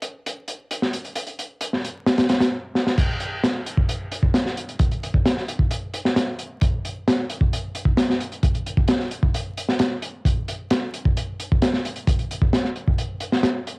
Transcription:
0.02 closed hi-hat
0.26 closed hi-hat
0.48 closed hi-hat
0.71 closed hi-hat
0.82 snare
0.93 closed hi-hat
1.05 closed hi-hat
1.15 closed hi-hat
1.27 closed hi-hat
1.39 closed hi-hat
1.61 closed hi-hat
1.73 snare
1.84 closed hi-hat
2.07 snare, closed hi-hat
2.18 snare, closed hi-hat
2.29 snare, closed hi-hat
2.41 snare, closed hi-hat
2.75 snare
2.87 snare
2.98 kick, closed hi-hat, crash
3.20 closed hi-hat
3.44 snare, closed hi-hat
3.66 closed hi-hat
3.77 kick
3.89 closed hi-hat
4.12 closed hi-hat
4.23 kick
4.34 snare, closed hi-hat
4.46 snare
4.57 closed hi-hat
4.69 closed hi-hat
4.79 kick, closed hi-hat
4.91 closed hi-hat
5.03 closed hi-hat
5.14 kick
5.26 snare, closed hi-hat
5.37 snare
5.48 closed hi-hat
5.59 kick
5.71 closed hi-hat
5.94 closed hi-hat
6.05 snare
6.16 snare, closed hi-hat
6.39 closed hi-hat
6.61 kick, closed hi-hat
6.85 closed hi-hat
7.08 snare, closed hi-hat
7.30 closed hi-hat
7.41 kick
7.53 closed hi-hat
7.75 closed hi-hat
7.85 kick
7.97 snare, closed hi-hat
8.10 snare
8.20 closed hi-hat
8.32 closed hi-hat
8.43 kick, closed hi-hat
8.55 closed hi-hat
8.66 closed hi-hat
8.77 kick
8.88 snare, closed hi-hat
9.00 snare
9.11 closed hi-hat
9.23 kick
9.34 closed hi-hat
9.57 closed hi-hat
9.69 snare
9.79 snare, closed hi-hat
10.02 closed hi-hat
10.25 kick, closed hi-hat
10.48 closed hi-hat
10.70 snare, closed hi-hat
10.94 closed hi-hat
11.05 kick
11.17 closed hi-hat
11.40 closed hi-hat
11.52 kick
11.62 snare, closed hi-hat
11.73 snare
11.85 closed hi-hat
11.96 closed hi-hat
12.07 kick, closed hi-hat
12.19 closed hi-hat
12.31 closed hi-hat
12.41 kick
12.53 snare, closed hi-hat
12.65 snare
12.76 closed hi-hat
12.87 kick
12.98 closed hi-hat
13.20 closed hi-hat
13.32 snare
13.43 snare, closed hi-hat
13.67 closed hi-hat

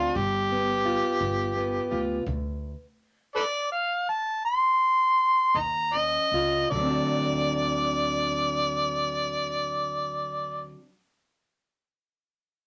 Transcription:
Already playing: C4 D4 F4
0.15 G1 G2 G4, kick
0.52 B3
0.85 F4
1.21 G1 G2, kick
1.57 B3
1.91 D2 F4
2.26 D2 D3, kick
3.35 A4 B4 D5
3.72 F5
4.09 A5
4.45 C6
5.54 D#2 D#3 D#5 A#5, kick
5.93 C#4 D#5
6.31 C#2 F4
6.70 D2 D3 D5
6.75 F#3
6.81 C4
6.86 D4
6.90 F#4

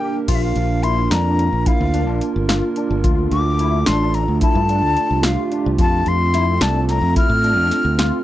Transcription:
Already playing: A#3 D4 G4 A#4 G5
0.00 G4
0.28 A#1 A#3 D4 F4 A#4 F5, kick, closed hi-hat, crash
0.35 E5
0.41 A#3 D4 F4 A#4 F5
0.56 A#1, closed hi-hat
0.83 A#3 D4 E4 F4 A#4 C6, closed hi-hat
1.10 F2 D4 A#5, snare, closed hi-hat
1.39 closed hi-hat
1.52 A#1 A#3 D4 F4 A#4
1.66 E4 F5, kick, closed hi-hat
1.81 D2
1.94 D4, closed hi-hat
2.07 A#1
2.20 A#3 D4 F4 A#4, closed hi-hat
2.36 G1
2.49 F4, snare, closed hi-hat
2.76 D4, closed hi-hat
2.90 G1
3.04 D2 A3 D4 F4 A4, kick, closed hi-hat
3.18 A3 D4 F4 A4
3.31 D2 D6, closed hi-hat
3.59 A3 D4 E4 F4 A4, closed hi-hat
3.86 A1 D4 C6, snare, closed hi-hat
4.14 A#5, closed hi-hat
4.27 D2 A3 D4 F4 A4
4.41 E4 A5, kick, closed hi-hat
4.55 G2
4.69 D4, closed hi-hat
4.83 D2
4.97 A3 D4 F4 G4, closed hi-hat
5.11 C2
5.23 F4 F5, snare, closed hi-hat
5.51 D4, closed hi-hat
5.66 C2
5.78 F2 A3 C4 F4 A4 A5, kick, closed hi-hat
5.92 A3 C4 F4 A4
6.06 F2 C6, closed hi-hat
6.33 A3 C4 E4 F4 A4, snare, closed hi-hat
6.61 C2 D4 A5, snare, closed hi-hat
6.89 A#5, snare, closed hi-hat
7.02 F2 A3 C4 F4 A4
7.16 E4 F6, kick, closed hi-hat
7.30 A2
7.44 D4, closed hi-hat
7.57 F2
7.71 A3 C4 F4 A4, snare, closed hi-hat
7.85 D2
7.99 F4, snare, closed hi-hat

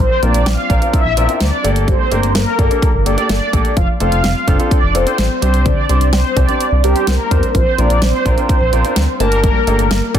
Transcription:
0.00 F3 C5
0.23 A#1 A#3 C4 D4 F4 A#4 D5, closed hi-hat
0.34 A#1 D5, closed hi-hat
0.46 A#1 C4 F5, snare, closed hi-hat
0.70 A#1 C4 D4 F4 A#4, kick, closed hi-hat
0.82 C4 D4 F4 A#4, closed hi-hat
0.93 E5, kick, closed hi-hat
1.05 A#1
1.17 A#1 C4 D4 F4 A#4, closed hi-hat
1.29 C4 D4 F4 A#4, closed hi-hat
1.41 D2 C4 D5, snare, closed hi-hat
1.64 G1 A3 A#3 D4 G4 A4, closed hi-hat
1.76 closed hi-hat
1.81 D5
1.88 G3 C5, kick, closed hi-hat
2.11 G1 A3 A#3 D4 G4 A#4, closed hi-hat
2.23 G1, closed hi-hat
2.35 G1 A#3 A#4, snare, closed hi-hat
2.59 G1 A#3 D4 G4 A4, kick, closed hi-hat
2.70 A#3 D4 G4 A4, closed hi-hat
2.82 kick, closed hi-hat
2.94 G1
3.06 G1 A#3 D4 G4 A4 D5, closed hi-hat
3.18 A#3 D4 G4 A4, closed hi-hat
3.29 G1 A#3 D5, snare, closed hi-hat
3.53 A#1 A3 A#3 D4 G4 A4, kick, closed hi-hat
3.65 closed hi-hat
3.77 F1 F3 F5, kick, closed hi-hat
4.00 F1 A3 C4 D4 F4 A4 F5, closed hi-hat
4.12 F1, closed hi-hat
4.24 F1 C4, snare, closed hi-hat
4.48 F1 C4 D4 F4 A4, kick, closed hi-hat
4.59 C4 D4 F4 A4, closed hi-hat
4.71 D5, kick, closed hi-hat
4.83 F1
4.95 F1 C4 D4 F4 A4 C5, closed hi-hat
5.07 C4 D4 F4 A4, closed hi-hat
5.18 A1 C4, snare, closed hi-hat
5.42 C2 G3 C4 D4 G4 C5, closed hi-hat
5.54 closed hi-hat
5.66 D3 D5, kick, closed hi-hat
5.89 C2 G3 C4 D4 G4 C5, closed hi-hat
6.01 C2, closed hi-hat
6.13 C2 C4 C5, snare, closed hi-hat
6.36 C2 C4 D4 G4 C5 D5, kick, closed hi-hat
6.48 C4 D4 G4 C5, closed hi-hat
6.61 closed hi-hat
6.72 C2
6.84 C2 C4 D4 G4 A#4, closed hi-hat
6.96 C4 D4 G4 C5, closed hi-hat
7.07 C2 C4 A#4, snare, closed hi-hat
7.31 E2 G3 C4 D4 G4 C5, kick, closed hi-hat
7.43 closed hi-hat
7.55 A#1 F3 C5, kick, closed hi-hat
7.78 A#1 A#3 C4 D4 F4 A#4 D5, closed hi-hat
7.90 A#1 D5, closed hi-hat
8.02 A#1 C4 C5, snare, closed hi-hat
8.26 A#1 C4 D4 F4 A#4, kick, closed hi-hat
8.37 C4 D4 F4 A#4, closed hi-hat
8.49 C5, kick, closed hi-hat
8.61 A#1
8.73 A#1 C4 D4 F4 A#4, closed hi-hat
8.85 C4 D4 F4 A#4, closed hi-hat
8.96 D2 C4, snare, closed hi-hat
9.20 G1 A3 A#3 D4 G4 A#4 A5, closed hi-hat
9.32 closed hi-hat
9.44 G3, kick, closed hi-hat
9.67 G1 A3 A#3 D4 G4 A4, closed hi-hat
9.79 G1, closed hi-hat
9.91 G1 A#3, snare, closed hi-hat
10.14 G1 A#3 D4 G4 A4, kick, closed hi-hat

